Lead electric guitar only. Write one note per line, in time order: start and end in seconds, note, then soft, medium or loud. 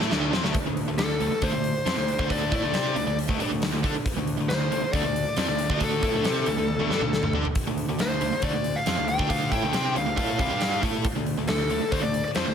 0.98 1.44 A4 medium
1.43 2.26 C5 medium
2.32 2.54 D5 loud
2.56 3.16 D5 medium
4.49 4.90 C5 loud
4.93 5.37 D5 loud
5.38 5.79 D5 loud
5.84 7.32 A4 medium
8.01 8.44 C5 medium
8.44 8.78 D5 medium
8.76 9.08 F5 medium
9.09 9.29 G5 medium
9.30 9.52 F5 loud
9.52 9.93 G5 medium
9.98 10.17 F5 medium
10.18 10.39 F5 medium
10.40 10.81 F5 medium
11.48 11.93 A4 medium
11.92 12.02 C5 loud
12.03 12.23 D5 loud
12.25 12.30 D5 medium
12.36 12.45 C5 medium
12.46 12.54 C5 medium